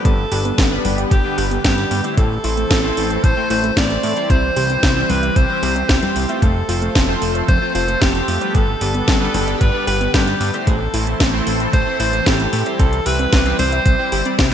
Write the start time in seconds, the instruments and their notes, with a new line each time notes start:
Already playing: analog polysynth G3 B3 D4 B4
0.05 analog synth bass G1, analog synth pad D3 G3 B3 G4, synth arpeggio sound B3, alto saxophone A4, kick, closed hi-hat
0.32 analog synth bass G1, analog polysynth G3 B3 D4 B4, synth arpeggio sound G4, open hi-hat
0.45 synth arpeggio sound B3, closed hi-hat
0.58 analog synth bass G1, synth arpeggio sound B4, kick, snare, closed hi-hat
0.71 analog polysynth G3 B3 D4 B4
0.85 analog synth bass G1, synth arpeggio sound B3, open hi-hat, high conga
0.98 synth arpeggio sound D5, closed hi-hat
1.11 analog synth bass G1, synth arpeggio sound B3, alto saxophone G4, kick, closed hi-hat
1.25 analog polysynth G3 B3 D4 B4
1.38 analog synth bass G1, synth arpeggio sound G4, open hi-hat
1.51 synth arpeggio sound B3, closed hi-hat
1.64 analog synth bass G1, analog polysynth G3 B3 D4 B4, alto saxophone G4, synth arpeggio sound B4, kick, snare, closed hi-hat
1.78 closed hi-hat
1.91 analog synth bass G2, synth arpeggio sound B3, open hi-hat
2.04 analog polysynth A3 C4 E4 C5, synth arpeggio sound D5, closed hi-hat
2.17 analog synth bass A1, analog synth pad E3 A3 C4 A4, synth arpeggio sound A3, alto saxophone A4, kick, closed hi-hat
2.44 analog synth bass A1, analog polysynth A3 C4 E4 C5, synth arpeggio sound E4, open hi-hat
2.57 synth arpeggio sound A3, closed hi-hat
2.71 analog synth bass A1, synth arpeggio sound A4, kick, snare, closed hi-hat
2.84 analog polysynth A3 C4 E4 C5
2.97 analog synth bass A1, synth arpeggio sound A3, open hi-hat
3.10 synth arpeggio sound C5, closed hi-hat
3.24 analog synth bass A1, synth arpeggio sound A3, alto saxophone C5, kick, closed hi-hat
3.37 analog polysynth A3 C4 E4 C5
3.50 analog synth bass A1, synth arpeggio sound E4, alto saxophone C5, open hi-hat
3.64 synth arpeggio sound A3, closed hi-hat
3.77 analog synth bass A1, analog polysynth A3 C4 E4 C5, synth arpeggio sound A4, alto saxophone D5, kick, snare, closed hi-hat
3.90 closed hi-hat
4.03 analog synth bass A2, synth arpeggio sound A3, open hi-hat
4.17 analog polysynth G3 C4 E4 C5, synth arpeggio sound C5, closed hi-hat
4.30 analog synth bass C2, analog synth pad G3 G4, synth arpeggio sound C4, alto saxophone C5, kick, closed hi-hat
4.56 analog synth bass C2, analog polysynth G3 C4 E4 C5, synth arpeggio sound G4, open hi-hat
4.70 synth arpeggio sound C4, closed hi-hat
4.83 analog synth bass C2, synth arpeggio sound C5, kick, snare, closed hi-hat
4.96 analog polysynth G3 C4 E4 C5
5.10 analog synth bass C2, synth arpeggio sound C4, alto saxophone B4, open hi-hat, high conga
5.23 synth arpeggio sound E5, closed hi-hat
5.36 analog synth bass C2, synth arpeggio sound C4, alto saxophone C5, kick, closed hi-hat
5.49 analog polysynth G3 C4 E4 C5
5.63 analog synth bass C2, synth arpeggio sound G4, open hi-hat
5.76 synth arpeggio sound C4, closed hi-hat
5.89 analog synth bass C2, analog polysynth G3 C4 E4 C5, alto saxophone G4, synth arpeggio sound C5, kick, snare, closed hi-hat
6.03 closed hi-hat, high conga
6.16 analog synth bass C2, synth arpeggio sound C4, open hi-hat
6.29 analog polysynth A3 C4 F4 C5, synth arpeggio sound E5, closed hi-hat
6.42 analog synth bass F1, analog synth pad F3 A3 A4, synth arpeggio sound A3, alto saxophone A4, kick, closed hi-hat
6.69 analog synth bass F1, analog polysynth A3 C4 F4 C5, synth arpeggio sound F4, open hi-hat
6.82 synth arpeggio sound A3, closed hi-hat
6.95 analog synth bass F1, synth arpeggio sound A4, kick, snare, closed hi-hat
7.09 analog polysynth A3 C4 F4 C5
7.22 analog synth bass F1, synth arpeggio sound A3, open hi-hat
7.35 synth arpeggio sound C5, closed hi-hat
7.48 analog synth bass F1, synth arpeggio sound A3, alto saxophone C5, kick, closed hi-hat
7.62 analog polysynth A3 C4 F4 C5
7.75 analog synth bass F1, synth arpeggio sound F4, alto saxophone C5, open hi-hat
7.88 synth arpeggio sound A3, closed hi-hat
8.01 analog synth bass F1, analog polysynth A3 C4 F4 C5, alto saxophone G4, synth arpeggio sound A4, kick, snare, closed hi-hat
8.15 closed hi-hat
8.28 analog synth bass F2, synth arpeggio sound A3, open hi-hat
8.41 analog polysynth G3 B3 D4 B4, synth arpeggio sound C5, closed hi-hat
8.55 analog synth bass G1, analog synth pad D3 G3 B3 G4, synth arpeggio sound B3, alto saxophone A4, kick, closed hi-hat
8.81 analog synth bass G1, analog polysynth G3 B3 D4 B4, synth arpeggio sound G4, open hi-hat
8.94 synth arpeggio sound B3, closed hi-hat
9.08 analog synth bass G1, synth arpeggio sound B4, kick, snare, closed hi-hat
9.21 analog polysynth G3 B3 D4 B4
9.34 analog synth bass G1, synth arpeggio sound B3, open hi-hat, high conga
9.48 synth arpeggio sound D5, closed hi-hat
9.61 analog synth bass G1, synth arpeggio sound B3, alto saxophone B4, kick, closed hi-hat
9.74 analog polysynth G3 B3 D4 B4
9.87 analog synth bass G1, synth arpeggio sound G4, alto saxophone B4, open hi-hat
10.01 synth arpeggio sound B3, closed hi-hat
10.14 analog synth bass G1, analog polysynth G3 B3 D4 B4, alto saxophone G4, synth arpeggio sound B4, kick, snare, closed hi-hat
10.27 closed hi-hat
10.41 analog synth bass G2, synth arpeggio sound B3, open hi-hat
10.54 analog polysynth A3 C4 E4 C5, synth arpeggio sound D5, closed hi-hat
10.67 analog synth bass A1, analog synth pad E3 A3 C4 A4, synth arpeggio sound A3, alto saxophone A4, kick, closed hi-hat
10.94 analog synth bass A1, analog polysynth A3 C4 E4 C5, synth arpeggio sound E4, open hi-hat
11.07 synth arpeggio sound A3, closed hi-hat
11.20 analog synth bass A1, synth arpeggio sound A4, kick, snare, closed hi-hat
11.33 analog polysynth A3 C4 E4 C5
11.47 analog synth bass A1, synth arpeggio sound A3, open hi-hat
11.60 synth arpeggio sound C5, closed hi-hat
11.73 analog synth bass A1, synth arpeggio sound A3, alto saxophone C5, kick, closed hi-hat
11.86 analog polysynth A3 C4 E4 C5
12.00 analog synth bass A1, synth arpeggio sound E4, alto saxophone C5, open hi-hat
12.13 synth arpeggio sound A3, closed hi-hat
12.26 analog synth bass A1, analog polysynth A3 C4 E4 C5, alto saxophone G4, synth arpeggio sound A4, kick, snare, closed hi-hat
12.40 closed hi-hat
12.53 analog synth bass A2, synth arpeggio sound A3, open hi-hat
12.66 analog polysynth G3 C4 E4 C5, synth arpeggio sound C5, closed hi-hat
12.79 analog synth bass C2, analog synth pad G3 G4, synth arpeggio sound C4, alto saxophone A4, kick, closed hi-hat
12.93 closed hi-hat
13.06 analog synth bass C2, analog polysynth G3 C4 E4 E5, synth arpeggio sound G4, alto saxophone B4, open hi-hat
13.19 synth arpeggio sound C4, closed hi-hat
13.33 analog synth bass C2, synth arpeggio sound C5, kick, snare, closed hi-hat
13.46 analog polysynth G3 C4 E4 C5, closed hi-hat
13.59 analog synth bass C2, synth arpeggio sound C4, alto saxophone C5, open hi-hat, high conga
13.72 synth arpeggio sound E5, closed hi-hat
13.86 analog synth bass C2, synth arpeggio sound C4, kick, closed hi-hat
13.99 analog polysynth G3 C4 E4 C5
14.12 analog synth bass G1, analog polysynth G3 C4 E4 C5, synth arpeggio sound G4, open hi-hat
14.25 analog polysynth G3 C4 E4 D5, synth arpeggio sound C4, closed hi-hat
14.39 analog synth bass C2, synth arpeggio sound C5, kick, snare, closed hi-hat